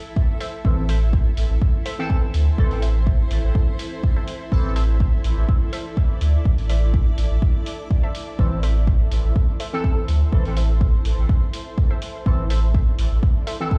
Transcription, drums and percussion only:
0, 0, Header, 1, 2, 480
1, 0, Start_track
1, 0, Key_signature, 0, "minor"
1, 0, Tempo, 483871
1, 642, Time_signature, 4, 2, 24, 8
1, 13670, End_track
2, 0, Start_track
2, 0, Title_t, "Drums"
2, 162, Note_on_c, 9, 36, 122
2, 261, Note_off_c, 9, 36, 0
2, 402, Note_on_c, 9, 46, 71
2, 501, Note_off_c, 9, 46, 0
2, 642, Note_on_c, 9, 36, 110
2, 741, Note_off_c, 9, 36, 0
2, 882, Note_on_c, 9, 46, 78
2, 981, Note_off_c, 9, 46, 0
2, 1122, Note_on_c, 9, 36, 112
2, 1221, Note_off_c, 9, 36, 0
2, 1362, Note_on_c, 9, 46, 69
2, 1461, Note_off_c, 9, 46, 0
2, 1602, Note_on_c, 9, 36, 118
2, 1701, Note_off_c, 9, 36, 0
2, 1842, Note_on_c, 9, 46, 82
2, 1941, Note_off_c, 9, 46, 0
2, 2082, Note_on_c, 9, 36, 116
2, 2181, Note_off_c, 9, 36, 0
2, 2321, Note_on_c, 9, 46, 69
2, 2421, Note_off_c, 9, 46, 0
2, 2562, Note_on_c, 9, 36, 111
2, 2661, Note_off_c, 9, 36, 0
2, 2690, Note_on_c, 9, 46, 30
2, 2789, Note_off_c, 9, 46, 0
2, 2801, Note_on_c, 9, 46, 77
2, 2900, Note_off_c, 9, 46, 0
2, 3042, Note_on_c, 9, 36, 109
2, 3141, Note_off_c, 9, 36, 0
2, 3281, Note_on_c, 9, 46, 66
2, 3380, Note_off_c, 9, 46, 0
2, 3522, Note_on_c, 9, 36, 113
2, 3621, Note_off_c, 9, 36, 0
2, 3761, Note_on_c, 9, 46, 78
2, 3861, Note_off_c, 9, 46, 0
2, 4002, Note_on_c, 9, 36, 112
2, 4101, Note_off_c, 9, 36, 0
2, 4241, Note_on_c, 9, 46, 66
2, 4341, Note_off_c, 9, 46, 0
2, 4482, Note_on_c, 9, 36, 111
2, 4581, Note_off_c, 9, 36, 0
2, 4721, Note_on_c, 9, 46, 75
2, 4820, Note_off_c, 9, 46, 0
2, 4962, Note_on_c, 9, 36, 110
2, 5061, Note_off_c, 9, 36, 0
2, 5201, Note_on_c, 9, 46, 66
2, 5301, Note_off_c, 9, 46, 0
2, 5442, Note_on_c, 9, 36, 110
2, 5541, Note_off_c, 9, 36, 0
2, 5682, Note_on_c, 9, 46, 76
2, 5781, Note_off_c, 9, 46, 0
2, 5922, Note_on_c, 9, 36, 109
2, 6021, Note_off_c, 9, 36, 0
2, 6162, Note_on_c, 9, 46, 66
2, 6261, Note_off_c, 9, 46, 0
2, 6402, Note_on_c, 9, 36, 111
2, 6501, Note_off_c, 9, 36, 0
2, 6531, Note_on_c, 9, 46, 30
2, 6630, Note_off_c, 9, 46, 0
2, 6642, Note_on_c, 9, 46, 77
2, 6741, Note_off_c, 9, 46, 0
2, 6882, Note_on_c, 9, 36, 109
2, 6981, Note_off_c, 9, 36, 0
2, 7121, Note_on_c, 9, 46, 68
2, 7220, Note_off_c, 9, 46, 0
2, 7362, Note_on_c, 9, 36, 115
2, 7461, Note_off_c, 9, 36, 0
2, 7602, Note_on_c, 9, 46, 75
2, 7701, Note_off_c, 9, 46, 0
2, 7842, Note_on_c, 9, 36, 111
2, 7941, Note_off_c, 9, 36, 0
2, 8082, Note_on_c, 9, 46, 67
2, 8181, Note_off_c, 9, 46, 0
2, 8322, Note_on_c, 9, 36, 115
2, 8421, Note_off_c, 9, 36, 0
2, 8561, Note_on_c, 9, 46, 79
2, 8661, Note_off_c, 9, 46, 0
2, 8802, Note_on_c, 9, 36, 113
2, 8901, Note_off_c, 9, 36, 0
2, 9042, Note_on_c, 9, 46, 68
2, 9141, Note_off_c, 9, 46, 0
2, 9282, Note_on_c, 9, 36, 117
2, 9381, Note_off_c, 9, 36, 0
2, 9522, Note_on_c, 9, 46, 80
2, 9621, Note_off_c, 9, 46, 0
2, 9762, Note_on_c, 9, 36, 117
2, 9861, Note_off_c, 9, 36, 0
2, 10002, Note_on_c, 9, 46, 68
2, 10101, Note_off_c, 9, 46, 0
2, 10242, Note_on_c, 9, 36, 120
2, 10341, Note_off_c, 9, 36, 0
2, 10370, Note_on_c, 9, 46, 33
2, 10469, Note_off_c, 9, 46, 0
2, 10482, Note_on_c, 9, 46, 83
2, 10581, Note_off_c, 9, 46, 0
2, 10722, Note_on_c, 9, 36, 121
2, 10821, Note_off_c, 9, 36, 0
2, 10962, Note_on_c, 9, 46, 71
2, 11061, Note_off_c, 9, 46, 0
2, 11202, Note_on_c, 9, 36, 121
2, 11301, Note_off_c, 9, 36, 0
2, 11442, Note_on_c, 9, 46, 85
2, 11541, Note_off_c, 9, 46, 0
2, 11682, Note_on_c, 9, 36, 122
2, 11781, Note_off_c, 9, 36, 0
2, 11922, Note_on_c, 9, 46, 71
2, 12021, Note_off_c, 9, 46, 0
2, 12162, Note_on_c, 9, 36, 122
2, 12261, Note_off_c, 9, 36, 0
2, 12402, Note_on_c, 9, 46, 83
2, 12501, Note_off_c, 9, 46, 0
2, 12642, Note_on_c, 9, 36, 120
2, 12741, Note_off_c, 9, 36, 0
2, 12882, Note_on_c, 9, 46, 74
2, 12981, Note_off_c, 9, 46, 0
2, 13122, Note_on_c, 9, 36, 127
2, 13221, Note_off_c, 9, 36, 0
2, 13362, Note_on_c, 9, 46, 86
2, 13462, Note_off_c, 9, 46, 0
2, 13602, Note_on_c, 9, 36, 123
2, 13670, Note_off_c, 9, 36, 0
2, 13670, End_track
0, 0, End_of_file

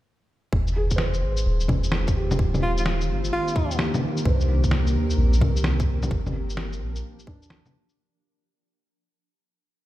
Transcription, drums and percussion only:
0, 0, Header, 1, 2, 480
1, 0, Start_track
1, 0, Tempo, 465116
1, 551, Time_signature, 4, 2, 24, 8
1, 10170, End_track
2, 0, Start_track
2, 0, Title_t, "Drums"
2, 542, Note_on_c, 9, 36, 113
2, 646, Note_off_c, 9, 36, 0
2, 695, Note_on_c, 9, 82, 29
2, 798, Note_off_c, 9, 82, 0
2, 935, Note_on_c, 9, 82, 55
2, 942, Note_on_c, 9, 36, 57
2, 1014, Note_on_c, 9, 38, 96
2, 1038, Note_off_c, 9, 82, 0
2, 1045, Note_off_c, 9, 36, 0
2, 1117, Note_off_c, 9, 38, 0
2, 1173, Note_on_c, 9, 82, 29
2, 1277, Note_off_c, 9, 82, 0
2, 1413, Note_on_c, 9, 82, 55
2, 1516, Note_off_c, 9, 82, 0
2, 1654, Note_on_c, 9, 82, 45
2, 1738, Note_on_c, 9, 61, 60
2, 1745, Note_on_c, 9, 36, 97
2, 1757, Note_off_c, 9, 82, 0
2, 1841, Note_off_c, 9, 61, 0
2, 1848, Note_off_c, 9, 36, 0
2, 1895, Note_on_c, 9, 82, 55
2, 1978, Note_on_c, 9, 38, 99
2, 1999, Note_off_c, 9, 82, 0
2, 2081, Note_off_c, 9, 38, 0
2, 2141, Note_on_c, 9, 82, 44
2, 2144, Note_on_c, 9, 36, 97
2, 2244, Note_off_c, 9, 82, 0
2, 2248, Note_off_c, 9, 36, 0
2, 2384, Note_on_c, 9, 61, 60
2, 2384, Note_on_c, 9, 82, 56
2, 2467, Note_on_c, 9, 36, 122
2, 2487, Note_off_c, 9, 61, 0
2, 2487, Note_off_c, 9, 82, 0
2, 2570, Note_off_c, 9, 36, 0
2, 2625, Note_on_c, 9, 61, 57
2, 2625, Note_on_c, 9, 82, 31
2, 2728, Note_off_c, 9, 61, 0
2, 2728, Note_off_c, 9, 82, 0
2, 2865, Note_on_c, 9, 82, 55
2, 2948, Note_on_c, 9, 38, 101
2, 2968, Note_off_c, 9, 82, 0
2, 3051, Note_off_c, 9, 38, 0
2, 3108, Note_on_c, 9, 82, 31
2, 3211, Note_off_c, 9, 82, 0
2, 3347, Note_on_c, 9, 82, 54
2, 3450, Note_off_c, 9, 82, 0
2, 3590, Note_on_c, 9, 82, 46
2, 3671, Note_on_c, 9, 36, 101
2, 3693, Note_off_c, 9, 82, 0
2, 3774, Note_off_c, 9, 36, 0
2, 3830, Note_on_c, 9, 82, 54
2, 3909, Note_on_c, 9, 38, 103
2, 3933, Note_off_c, 9, 82, 0
2, 4013, Note_off_c, 9, 38, 0
2, 4069, Note_on_c, 9, 61, 58
2, 4069, Note_on_c, 9, 82, 45
2, 4173, Note_off_c, 9, 61, 0
2, 4173, Note_off_c, 9, 82, 0
2, 4306, Note_on_c, 9, 82, 56
2, 4391, Note_on_c, 9, 36, 124
2, 4409, Note_off_c, 9, 82, 0
2, 4494, Note_off_c, 9, 36, 0
2, 4546, Note_on_c, 9, 82, 31
2, 4649, Note_off_c, 9, 82, 0
2, 4786, Note_on_c, 9, 82, 55
2, 4789, Note_on_c, 9, 36, 61
2, 4864, Note_on_c, 9, 38, 103
2, 4889, Note_off_c, 9, 82, 0
2, 4892, Note_off_c, 9, 36, 0
2, 4967, Note_off_c, 9, 38, 0
2, 5024, Note_on_c, 9, 82, 31
2, 5127, Note_off_c, 9, 82, 0
2, 5265, Note_on_c, 9, 82, 53
2, 5368, Note_off_c, 9, 82, 0
2, 5503, Note_on_c, 9, 82, 46
2, 5585, Note_on_c, 9, 61, 57
2, 5587, Note_on_c, 9, 36, 104
2, 5606, Note_off_c, 9, 82, 0
2, 5688, Note_off_c, 9, 61, 0
2, 5691, Note_off_c, 9, 36, 0
2, 5743, Note_on_c, 9, 82, 55
2, 5822, Note_on_c, 9, 38, 106
2, 5846, Note_off_c, 9, 82, 0
2, 5925, Note_off_c, 9, 38, 0
2, 5982, Note_on_c, 9, 82, 44
2, 5985, Note_on_c, 9, 36, 101
2, 6085, Note_off_c, 9, 82, 0
2, 6088, Note_off_c, 9, 36, 0
2, 6220, Note_on_c, 9, 61, 58
2, 6220, Note_on_c, 9, 82, 56
2, 6305, Note_on_c, 9, 36, 121
2, 6323, Note_off_c, 9, 61, 0
2, 6323, Note_off_c, 9, 82, 0
2, 6408, Note_off_c, 9, 36, 0
2, 6465, Note_on_c, 9, 61, 55
2, 6465, Note_on_c, 9, 82, 28
2, 6569, Note_off_c, 9, 61, 0
2, 6569, Note_off_c, 9, 82, 0
2, 6706, Note_on_c, 9, 82, 53
2, 6781, Note_on_c, 9, 38, 106
2, 6809, Note_off_c, 9, 82, 0
2, 6884, Note_off_c, 9, 38, 0
2, 6942, Note_on_c, 9, 82, 31
2, 7045, Note_off_c, 9, 82, 0
2, 7181, Note_on_c, 9, 82, 52
2, 7284, Note_off_c, 9, 82, 0
2, 7423, Note_on_c, 9, 82, 45
2, 7504, Note_on_c, 9, 36, 106
2, 7526, Note_off_c, 9, 82, 0
2, 7607, Note_off_c, 9, 36, 0
2, 7663, Note_on_c, 9, 82, 53
2, 7743, Note_on_c, 9, 38, 108
2, 7766, Note_off_c, 9, 82, 0
2, 7846, Note_off_c, 9, 38, 0
2, 7902, Note_on_c, 9, 61, 56
2, 7902, Note_on_c, 9, 82, 44
2, 8005, Note_off_c, 9, 61, 0
2, 8005, Note_off_c, 9, 82, 0
2, 8144, Note_on_c, 9, 82, 54
2, 8247, Note_off_c, 9, 82, 0
2, 10170, End_track
0, 0, End_of_file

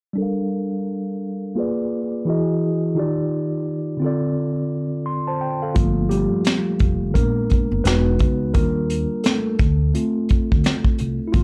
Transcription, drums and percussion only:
0, 0, Header, 1, 2, 480
1, 0, Start_track
1, 0, Key_signature, -2, "minor"
1, 0, Tempo, 697674
1, 122, Time_signature, 4, 2, 24, 8
1, 7867, End_track
2, 0, Start_track
2, 0, Title_t, "Drums"
2, 3959, Note_on_c, 9, 42, 81
2, 3962, Note_on_c, 9, 36, 94
2, 4027, Note_off_c, 9, 42, 0
2, 4031, Note_off_c, 9, 36, 0
2, 4203, Note_on_c, 9, 42, 67
2, 4271, Note_off_c, 9, 42, 0
2, 4434, Note_on_c, 9, 42, 65
2, 4450, Note_on_c, 9, 38, 96
2, 4503, Note_off_c, 9, 42, 0
2, 4519, Note_off_c, 9, 38, 0
2, 4673, Note_on_c, 9, 42, 57
2, 4681, Note_on_c, 9, 36, 89
2, 4742, Note_off_c, 9, 42, 0
2, 4750, Note_off_c, 9, 36, 0
2, 4921, Note_on_c, 9, 36, 82
2, 4921, Note_on_c, 9, 42, 81
2, 4989, Note_off_c, 9, 36, 0
2, 4990, Note_off_c, 9, 42, 0
2, 5157, Note_on_c, 9, 42, 58
2, 5171, Note_on_c, 9, 36, 75
2, 5226, Note_off_c, 9, 42, 0
2, 5239, Note_off_c, 9, 36, 0
2, 5400, Note_on_c, 9, 42, 81
2, 5414, Note_on_c, 9, 38, 105
2, 5468, Note_off_c, 9, 42, 0
2, 5483, Note_off_c, 9, 38, 0
2, 5635, Note_on_c, 9, 42, 70
2, 5645, Note_on_c, 9, 36, 82
2, 5704, Note_off_c, 9, 42, 0
2, 5714, Note_off_c, 9, 36, 0
2, 5878, Note_on_c, 9, 42, 83
2, 5881, Note_on_c, 9, 36, 97
2, 5946, Note_off_c, 9, 42, 0
2, 5950, Note_off_c, 9, 36, 0
2, 6121, Note_on_c, 9, 42, 73
2, 6190, Note_off_c, 9, 42, 0
2, 6354, Note_on_c, 9, 42, 72
2, 6370, Note_on_c, 9, 38, 98
2, 6423, Note_off_c, 9, 42, 0
2, 6439, Note_off_c, 9, 38, 0
2, 6596, Note_on_c, 9, 42, 61
2, 6601, Note_on_c, 9, 36, 103
2, 6664, Note_off_c, 9, 42, 0
2, 6670, Note_off_c, 9, 36, 0
2, 6843, Note_on_c, 9, 42, 79
2, 6912, Note_off_c, 9, 42, 0
2, 7078, Note_on_c, 9, 42, 58
2, 7091, Note_on_c, 9, 36, 82
2, 7147, Note_off_c, 9, 42, 0
2, 7160, Note_off_c, 9, 36, 0
2, 7236, Note_on_c, 9, 36, 86
2, 7305, Note_off_c, 9, 36, 0
2, 7320, Note_on_c, 9, 42, 81
2, 7335, Note_on_c, 9, 38, 111
2, 7389, Note_off_c, 9, 42, 0
2, 7403, Note_off_c, 9, 38, 0
2, 7461, Note_on_c, 9, 36, 88
2, 7530, Note_off_c, 9, 36, 0
2, 7556, Note_on_c, 9, 42, 66
2, 7625, Note_off_c, 9, 42, 0
2, 7798, Note_on_c, 9, 42, 75
2, 7802, Note_on_c, 9, 36, 102
2, 7866, Note_off_c, 9, 42, 0
2, 7867, Note_off_c, 9, 36, 0
2, 7867, End_track
0, 0, End_of_file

